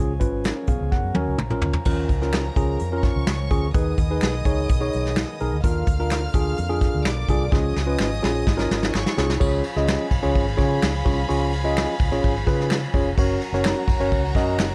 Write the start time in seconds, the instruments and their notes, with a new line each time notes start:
Already playing: fingered electric bass C#2, tonewheel organ F3 C#4 G#4, tine electric piano C#4 F4 G#4
0.20 fingered electric bass G#1, tine electric piano C#4 F4 B4, kick, closed hi-hat
0.44 tine electric piano C#4 A#4, finger snap, snare, closed hi-hat
0.67 fingered electric bass B1, tine electric piano B3 G#4 F5, kick, closed hi-hat
0.81 fingered electric bass C#2
0.92 fingered electric bass F#1, tonewheel organ F#3 A#4, tine electric piano F#5, kick, snare
1.05 fingered electric bass F#2
1.15 fingered electric bass D#2, tine electric piano C#4 F#4 A#4 G#5, high tom
1.28 fingered electric bass C#2
1.38 fingered electric bass A#1, tonewheel organ F3, tine electric piano A#5, finger snap, mid tom
1.50 tine electric piano C#4 F4 A#4, mid tom
1.61 fingered electric bass D2, tine electric piano A#5, floor tom
1.73 floor tom
1.85 fingered electric bass D#2, tonewheel organ F3 C#4 A#4, tine electric piano C#4 F4 A#4, violin section A#4 A#5, kick, crash
2.09 fingered electric bass C#2, kick, closed hi-hat
2.22 tine electric piano C#4 F4 A#4, snare
2.32 finger snap, snare, closed hi-hat
2.56 fingered electric bass C#2, tine electric piano C#4 F4 G#4, kick, closed hi-hat
2.79 fingered electric bass F2, closed hi-hat
2.92 tine electric piano C#4 F4 A#4
3.03 violin section C#5 C#6, kick, snare, closed hi-hat
3.16 fingered electric bass C#2
3.27 fingered electric bass C#2, finger snap, snare, closed hi-hat
3.51 fingered electric bass D2, tine electric piano C#4 F4 G#4, kick, closed hi-hat
3.73 fingered electric bass D#2, tonewheel organ D#3 B3 G#4, tine electric piano D#4 G#4 B4, violin section D#5 D#6, kick, closed hi-hat
3.98 fingered electric bass D#2, kick, closed hi-hat
4.10 tine electric piano D#4 G#4 B4
4.21 fingered electric bass B1, finger snap, snare, closed hi-hat
4.45 fingered electric bass C#2, tine electric piano D#4 G#4 C#5, kick, closed hi-hat
4.69 fingered electric bass B1, kick, closed hi-hat
4.80 tine electric piano D#4 G#4 C#5
4.93 fingered electric bass B1, closed hi-hat
5.06 snare
5.16 finger snap, snare, closed hi-hat
5.40 fingered electric bass B1, tine electric piano D#4 G#4 A#4, closed hi-hat
5.53 fingered electric bass D2
5.63 fingered electric bass D#2, tonewheel organ D3 A#3 F4, tine electric piano D4 F4 A#4, violin section F5 F6, kick, closed hi-hat
5.87 fingered electric bass D2, kick, closed hi-hat
6.00 tine electric piano D4 F4 A#4
6.10 finger snap, snare, closed hi-hat
6.34 fingered electric bass D2, tine electric piano D4 F4 G#4, kick, closed hi-hat
6.57 fingered electric bass F2, closed hi-hat
6.69 tine electric piano D4 F4 G#4
6.81 kick, snare, closed hi-hat
6.95 fingered electric bass D2
7.04 fingered electric bass B1, violin section D5 D6, finger snap, snare, closed hi-hat
7.28 fingered electric bass C2, tine electric piano D4 F4 G#4, kick, closed hi-hat
7.51 fingered electric bass C#2, tonewheel organ F3 C#4 G#4, tine electric piano C#4 F4 G#4, violin section D#5 D#6, kick, snare
7.76 fingered electric bass C#2, snare
7.87 tine electric piano C#4 F4 B4
7.99 fingered electric bass G#1, finger snap, snare
8.22 fingered electric bass A#1, tine electric piano C#4 F4 G#4, snare
8.47 fingered electric bass G#1, kick, snare
8.57 tine electric piano C#4 F4 A#4, snare
8.71 fingered electric bass G#1, snare
8.83 snare
8.94 fingered electric bass G#1, violin section C#5 C#6, finger snap, snare
9.06 snare
9.17 fingered electric bass C2, tine electric piano C#4 F4 G#4, snare
9.30 snare
9.39 fingered electric bass C#2, tonewheel organ F3 C#4 G#4, tine electric piano C#4 F4 G#4 C#5, violin section G#4 F5 B5, kick, crash
9.64 ride
9.76 fingered electric bass C#2, tine electric piano C#4 F4 G#4 D#5, snare
9.87 finger snap, snare, ride
10.11 fingered electric bass B1, kick, ride
10.22 fingered electric bass C#2, tine electric piano C#4 F4 G#4 C#5, ride
10.35 fingered electric bass G#1, kick, ride
10.48 ride
10.57 fingered electric bass C#3, tine electric piano C#4 F4 G#4 C#5, kick, snare, ride
10.82 fingered electric bass C#2, finger snap, snare, ride
11.05 fingered electric bass C2, tine electric piano C#4 F4 G#4 C#5, kick, ride
11.29 fingered electric bass C#2, tine electric piano C#4 F4 G#4 C#5, ride
11.53 ride
11.64 tine electric piano C#4 F4 G#4 D#5
11.76 finger snap, snare, ride
12.00 fingered electric bass C#2, kick, ride
12.11 fingered electric bass A#1, tine electric piano C#4 F4 G#4 C#5, ride
12.24 fingered electric bass G#1, kick, ride
12.37 ride
12.47 fingered electric bass C#3, tine electric piano C#4 F4 G#4 B4, kick, snare, ride
12.60 snare
12.70 finger snap, snare, ride
12.94 fingered electric bass F1, tine electric piano C#4 F4 G#4 C#5, kick, ride
13.16 fingered electric bass F#1, tonewheel organ F#3 A#4, tine electric piano C#4 F#4 A#4 C#5, violin section F#4 C#5 A#5, kick, ride
13.41 ride
13.52 fingered electric bass F#1, tine electric piano C#4 F#4 A#4 C#5, snare
13.64 finger snap, snare, ride
13.87 fingered electric bass F1, kick, ride
14.00 fingered electric bass F#1, tine electric piano C#4 F#4 A#4 C#5, ride
14.12 fingered electric bass C#2, kick, ride
14.25 ride
14.35 fingered electric bass F#2, tine electric piano C#4 F#4 A#4 D#5, kick, snare, ride
14.58 fingered electric bass F#1, finger snap, snare, ride